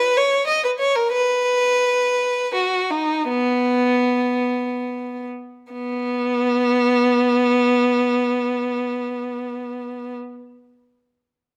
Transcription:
Already playing: B4
0.17 C#5
0.47 D#5
0.64 B4
0.79 C#5
0.96 A#4
1.13 B4
2.54 F#4
2.91 D#4
3.29 B3
5.72 B3

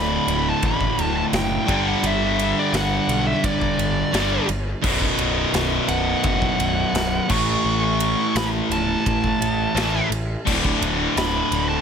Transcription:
Already playing: D1 D2 A2 D3 B5
0.27 D1, ride
0.50 A5
0.63 A1 B5, kick, ride
0.81 kick
0.98 D1, ride
1.17 A5
1.32 F#1 G5, snare, ride
1.67 G1 G2 D3 G3, kick, ride
1.88 F#5
2.03 G1 E5, ride
2.39 ride
2.59 D5
2.73 G1 F#5, snare, ride
3.07 B1, ride
3.27 E5
3.44 G1 D5, kick, ride
3.61 kick
3.77 G1, ride
4.12 G1 G2 D3 G3, snare, ride
4.48 G1, ride
4.82 B0 B1 F#2 B2, kick, crash
5.01 kick
5.19 B0, ride
5.53 B0, snare, ride
5.88 B0 F#5, ride
6.24 F#1, kick, ride
6.42 kick
6.58 B0, ride
6.93 B0, snare, ride
7.29 A1 A2 E3 A3 C#6, kick, crash
7.64 A1
7.84 C#6
8.00 ride
8.35 A1 B5, snare, ride
8.70 C#1 A5, ride
9.06 A1, kick, ride
9.24 kick
9.40 A1, ride
9.74 A1 A2 E3 A3, snare, ride
10.10 A1, ride
10.45 D1 D2 A2 D3, kick, crash
10.65 kick
10.81 D1, ride
11.16 D1 B5, snare, ride
11.51 D1, ride
11.69 A5

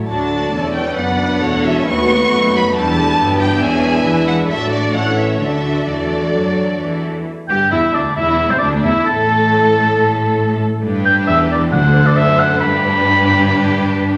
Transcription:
0.08 D2 F#3 D4 F#4 A4 D5 A5
0.32 F#4
0.54 E1 E2 C#4 E4 A4
0.76 B4 G5
0.96 F#1 F#2 F#3 B3 D4 D5 F#5
1.20 D4
1.42 E1 E2 A3 F#4 A4 C#5
1.65 C#4 E5
1.88 D#2 A3 B3 F#4 B4 C#6
2.33 F#1 F#2 A3 D#4
2.56 F#3 B5
2.75 E1 E2 G3 D4 E4 G4 B4 A5
2.98 A3
3.19 G1 G2 F#3 B3 E4 G4
3.41 D4 G5
3.62 E1 E2 E3 C#4 D4 E4 G#4 E5 G#5
3.85 B3
4.05 E2 E3 G#3 B4
4.27 F#5
4.48 A1 A2 F#3 A3 D4 F#4 A4 D5 E5
4.72 D5
4.93 A1 A2 E3 A3 C#4 E4 A4 C#5 F#5
5.18 E5
5.38 D2 D3 F#3 A3 D4 F#4 A4 D5 E5
5.87 E2 E3 F#3 D4 D5
6.34 F#2 F#3
6.80 E2 E3
7.48 G1 G2 G4 G5
7.71 E1 E2 E4 E5
7.94 D2 D4 D5
8.16 E1 E2 E4 E5
8.49 C2 C4 C5
8.58 D2 D4 D5
8.83 E1 E2 E4 E5
9.06 A1 A2 A4 A5
10.83 G1 G2 D4 G4 B4
11.05 G5
11.27 E1 E2 E5
11.51 D5
11.72 D2 D3 D4 A4 C5 F#5
12.06 D5
12.16 F#1 F#2 E5
12.39 F#5
12.60 G1 G2 D4 G4 B4 B5

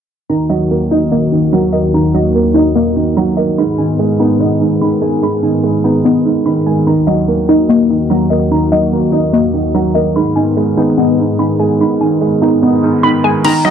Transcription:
0.29 D#2 D#3 A#3 F#4 A#5
0.50 F#3 D#5
0.71 A#3
0.91 D#4
1.12 A#3 D#5
1.32 D#3
1.52 F#3 A#5
1.73 A#3 D#5
1.94 D#3 A#5
2.14 F#3 D#5
2.35 A#3
2.54 D#4
2.76 A#3 D#5
2.96 D#3
3.17 F#3 A#5
3.37 A#3 D#5
3.58 G#2 D#3 B3 G#4 B5
3.78 D#3 G#5
3.99 G#3
4.20 B3 D#4
4.40 B3 D#4
4.61 G#2
4.81 D#3 B5
5.02 G#3 G#5
5.22 G#2 B5
5.43 D#3 G#5
5.64 G#3
5.84 B3 D#4
6.04 B3 D#4
6.25 G#2
6.46 D#3 B5
6.66 G#3 G#5
6.87 D#2 D#3 A#3 F#4 A#5
7.07 F#3 D#5
7.28 A#3
7.49 D#4
7.69 A#3 D#5
7.90 D#3
8.10 F#3 A#5
8.30 A#3 D#5
8.51 D#3 A#5
8.72 F#3 D#5
8.92 A#3
9.12 D#4
9.33 A#3 D#5
9.54 D#3
9.74 F#3 A#5
9.95 A#3 D#5
10.16 G#2 B3 G#4 B5
10.36 D#3 G#5
10.57 G#3
10.77 B3 D#4
10.98 B3 D#4
11.19 G#2
11.39 D#3 B5
11.59 G#3 G#5
11.80 G#2 B5
12.01 D#3 G#5
12.21 G#3
12.42 B3 D#4
12.62 B3 D#4
12.83 G#2
13.03 D#3 B5
13.24 G#3 G#5
13.45 D#3 A#5, closed hi-hat, crash
13.65 F#3 D#5

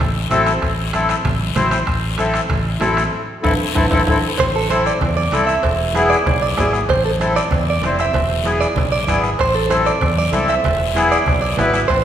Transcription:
0.00 A1, bombo low, bombo rim, low conga, high timbale, long guiro
0.30 A1 C4 E4 A4, bombo rim, high conga, low conga, high timbale, low timbale, short guiro
0.46 bombo rim, high timbale, short guiro
0.62 A1, bombo low, bombo rim, high timbale, long guiro
0.93 C4 E4 A4, bombo rim, high conga, high timbale, short guiro
1.09 bombo rim, high timbale, short guiro
1.25 A1, bombo low, bombo rim, low conga, high timbale, long guiro
1.41 high conga
1.55 A1 C4 E4 C5, bombo rim, high conga, low conga, high timbale, low timbale, short guiro
1.71 bombo rim, high timbale, short guiro
1.87 A1, bombo low, bombo rim, high timbale, long guiro
2.18 C4 E4 A4, bombo rim, high conga, high timbale, short guiro
2.34 bombo rim, high timbale, short guiro
2.50 A1, bombo low, bombo rim, low conga, high timbale, long guiro
2.80 A1 C4 E4 A4, bombo rim, high conga, high timbale, low timbale, short guiro
2.97 bombo rim, high timbale, short guiro
3.42 A1 C4 E4 A4, bombo low, high conga, high timbale, long guiro
3.75 A1 C4 E4 A4, bombo low, high conga, high timbale, long guiro
3.91 A1 C4 E4 A4, bombo low, high conga, high timbale, long guiro
4.07 A1 C4 E4 A4, bombo low, high conga, high timbale, long guiro
4.38 A1 C5, bombo low, bombo rim, cowbell, low conga, long guiro
4.56 A4
4.70 C4 E4 A4 C5, bombo rim, cowbell, high conga, short guiro
4.86 D5, bombo rim, short guiro
5.01 E2, bombo low, bombo rim, cowbell, low conga, long guiro
5.17 D5, high conga
5.32 C2 C4 E4 A4, bombo rim, cowbell, high conga, short guiro
5.47 E5, bombo rim, short guiro
5.63 E1, bombo low, bombo rim, cowbell, long guiro
5.94 B3 E4 G#4, bombo rim, cowbell, high conga, short guiro
6.10 D5, bombo rim, short guiro
6.26 B1, bombo low, bombo rim, cowbell, low conga, long guiro
6.42 D5
6.57 G#1 B3 E4 G#4, bombo low, bombo rim, cowbell, high conga, low timbale, short guiro
6.73 bombo rim, short guiro
6.89 A1 C5, bombo low, bombo rim, cowbell, low conga, long guiro
7.05 A4
7.20 C4 E4 A4 C5, bombo rim, cowbell, high conga, short guiro
7.36 D5, bombo rim, short guiro
7.51 E2, bombo low, bombo rim, cowbell, low conga, long guiro
7.70 D5
7.82 F1 C4 E4 C5, bombo rim, cowbell, high conga, low conga, short guiro
7.99 E5, bombo rim, short guiro
8.13 E1, bombo low, bombo rim, cowbell, low conga, long guiro
8.44 B3 E4 G#4, bombo rim, cowbell, high conga, short guiro
8.61 D5, bombo rim, short guiro
8.76 B1, bombo low, bombo rim, cowbell, low conga, long guiro
8.92 D5
9.07 G#1 B3 E4 G#4, bombo low, bombo rim, cowbell, high conga, short guiro
9.24 bombo rim, short guiro
9.39 A1 C5, bombo low, bombo rim, cowbell, long guiro
9.55 A4
9.69 C4 E4 A4 C5, bombo rim, cowbell, high conga, short guiro
9.86 D5, bombo rim, short guiro
10.01 E2, bombo low, bombo rim, cowbell, low conga, long guiro
10.17 D5, high conga
10.32 C2 C4 E4 A4, bombo rim, cowbell, high conga, short guiro
10.48 E5, bombo rim, short guiro
10.64 E1, bombo low, bombo rim, cowbell, low conga, long guiro
10.95 B3 E4 G#4, bombo rim, cowbell, high conga, short guiro
11.12 D5, bombo rim, short guiro
11.26 B1, bombo low, bombo rim, cowbell, low conga, long guiro
11.42 D5
11.57 G#1 B3 E4 B4, bombo rim, cowbell, high conga, low conga, low timbale, short guiro
11.74 bombo rim, short guiro
11.88 A1 C5, bombo low, bombo rim, cowbell, long guiro

